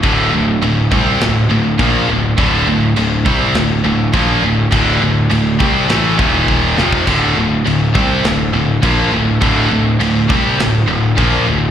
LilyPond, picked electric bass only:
\new Staff \with { instrumentName = "Picked electric bass" } { \clef bass \time 4/4 \key d \phrygian \tempo 4 = 102 d,,8 d,,8 d,,8 c,8 d,,8 d,,8 bes,,8 d,,8 | d,,8 d,,8 d,,8 c,8 d,,8 d,,8 bes,,8 d,,8 | d,,8 d,,8 d,,8 c,8 a,,8 ees,,4 f,,8 | d,,8 d,,8 d,,8 c,8 d,,8 d,,8 bes,,8 d,,8 |
d,,8 d,,8 d,,8 c,8 d,,8 d,,8 bes,,8 d,,8 | }